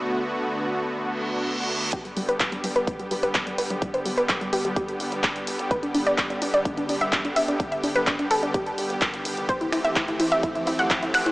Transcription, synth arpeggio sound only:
X:1
M:4/4
L:1/16
Q:1/4=127
K:G
V:1 name="Synth arpeggio sound"
z16 | G G, G, B G, G, G, B G, G, G, B G, G, B G, | G, c G, B G, G, G G, G6- G z | B D D d D D D d D D D e D D e D |
D e D B D D A D G6- G z | c E E e E E E e E E E f E E f E |]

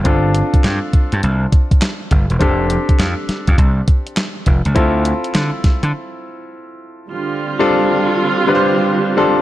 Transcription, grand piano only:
X:1
M:4/4
L:1/16
Q:"Swing 16ths" 1/4=102
K:Gdor
V:1 name="Grand piano"
[CDFA]16 | [CDGA]16 | [CEFA]16 | z3 [G,CDFA]4- [G,CDFA] z [G,CDF=Bc]4 z [G,CDFA]2 |]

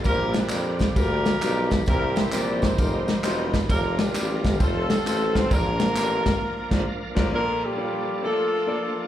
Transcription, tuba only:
X:1
M:4/4
L:1/8
Q:"Swing" 1/4=132
K:Bb
V:1 name="Tuba" clef=bass
B,,,2 F,,2 D,,2 _C,,2 | C,,2 B,,,2 F,,, z =E,,,2 | F,,,2 A,,, G,,, F,,,2 A,,,2 | B,,,2 A,,,2 z B,,, z B,,, |
z8 |]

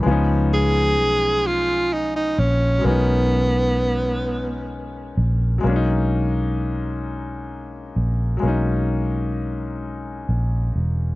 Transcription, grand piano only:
X:1
M:6/8
L:1/8
Q:3/8=43
K:B
V:1 name="Grand piano"
[E,^E,G,B,CD]6 | [F,G,CDA]6 | [F,G,A,C=D^D]6 | [F,G,A,CD]6 |]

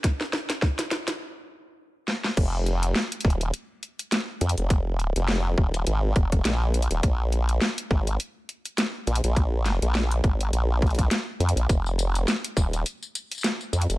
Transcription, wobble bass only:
X:1
M:4/4
L:1/16
Q:"Swing 16ths" 1/4=103
K:Fm
V:1 name="Wobble bass" clef=bass
z16 | F,,,4 z2 E,,,2 z6 F,, F,,,- | F,,,3 F,,,3 E,,,2 A,,,2 F,,,2 B,,,3 E,,, | B,,,4 z2 A,,,2 z6 B,,, B,,,- |
B,,,3 B,,,3 A,,,2 B,,,4 z2 F,, B,,, | F,,,4 z2 E,,,2 z6 F,, F,,, |]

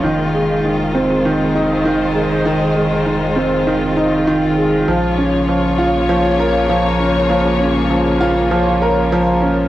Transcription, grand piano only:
X:1
M:4/4
L:1/8
Q:1/4=99
K:Fm
V:1 name="Grand piano" clef=bass
E, A, E, C E, E E, A, | E, A, E, C E, E E, A, | F, D F, F F, B F, D | F, D F, F F, B F, D |]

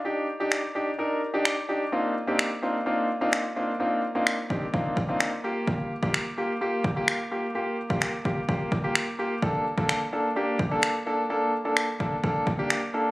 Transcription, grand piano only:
X:1
M:4/4
L:1/16
Q:1/4=128
K:Bb
V:1 name="Grand piano"
[DEG]2 z [DEG]2 z [DEG] z [DEB]2 z [DEG]2 z [DEG] z | [B,CDEF]2 z [B,CDEG]2 z [B,CDEF] z [B,CDEF]2 z [B,CDEF]2 z [B,CDEF] z | [B,CDEF]2 z [B,CDEF]2 z [B,CDEG] z [B,CDEF]2 z [B,CDEF]2 z [B,FG]2- | [B,FG]2 z [B,FG]2 z [B,FG] z [B,FG]2 z [B,FG]2 z [B,FG] z |
[B,FG]2 z [B,FG]2 z [B,FG] z [B,FG]2 z [B,FG]2 z [B,FG] z | [B,DA]2 z [B,DA]2 z [B,DA] z [B,DG]2 z [B,DA]2 z [B,DA] z | [B,DA]2 z [B,DA]2 z [B,DA] z [B,DA]2 z [B,DG]2 z [B,DA] z |]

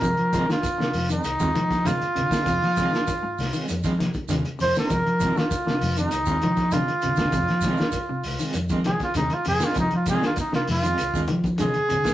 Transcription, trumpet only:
X:1
M:4/4
L:1/16
Q:1/4=99
K:Fdor
V:1 name="Trumpet"
B3 F4 E4- E F4- | F8 z6 c B- | B3 F4 E4- E F4- | F8 z2 A F E F A F |
E F A F E F F4 z2 A4 |]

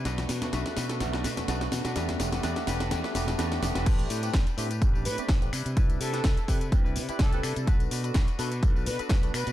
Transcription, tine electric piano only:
X:1
M:4/4
L:1/16
Q:"Swing 16ths" 1/4=126
K:Bphr
V:1 name="Tine electric piano"
[A,B,DF]3 [A,B,DF] [A,B,DF]3 [A,B,DF] [A,B,DF]3 [A,B,DF] [A,B,DF]3 [A,B,DF] | [A,B,DG]2 [A,B,DG]2 [A,B,DG]2 [A,B,DG]2 [A,B,DG]2 [A,B,DG]2 [A,B,DG]2 [A,B,DG]2 | [A,CDGB]3 [A,B,CDG] z2 [A,B,CDG] z [A,CDGB]3 [A,B,CDG] z [A,B,CDG] z2 | [CDEGB]3 [CDEGB] z2 [CDEGB] z [CDEGB]3 [CDEGB] z [CDEGB] z2 |
[B,DFAB]3 [B,DFAB] z2 [B,DFAB] z [B,DFAB]3 [B,DFAB] z [B,DFAB] z2 |]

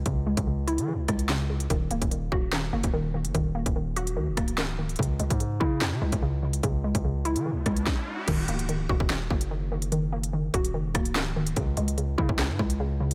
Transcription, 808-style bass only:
X:1
M:4/4
L:1/16
Q:1/4=146
K:Ebphr
V:1 name="808-style bass" clef=bass
D,,3 D,,4 F,3/2 D,,3/2 D,,6 | E,,,2 D,,, E,,,3 E,,,4 G,,, E,,,4 G,,, | E,,,3 E,,,4- E,,, E,, E,,, D,,,6 | D,,2 D,, A,,3 D,2 F,, D, D,, D,,4- D,, |
D,,3 D,,4 F,3/2 D,,3/2 D,,2 z4 | E,,,2 D,,,4 E,,, E,,,3 G,,,6- | G,,,6 E,,,2 G,,, E,,, D,,,6 | D,,2 D,,4 D, D,,2 A,, D,,6 |]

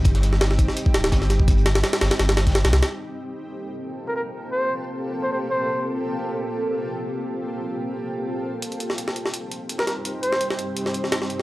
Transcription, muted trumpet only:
X:1
M:4/4
L:1/16
Q:"Swing 16ths" 1/4=168
K:Gm
V:1 name="Muted trumpet"
z16 | z16 | z12 z B B z | z2 c2 z6 c c z c3- |
c z12 z3 | z16 | z12 z B B z | z2 c2 z12 |]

